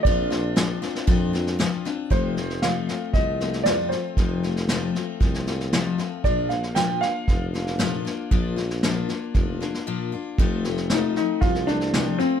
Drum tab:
HH |----p-------p---|----p-------p---|----p-------p---|----p-------p---|
SD |o-o-o-ooo-ooo-o-|o-ooo-o-o-ooo-o-|o-ooo-o-ooooo-o-|o-ooo-o-o-ooo-o-|
BD |o-------o-------|o-------o-------|o-------o-------|o-------o-------|

HH |----p-----------|----p-------p---|
SD |o-ooo-o-o-oo----|o-ooo-o-ooooo-o-|
BD |o-------o-------|o-------o-------|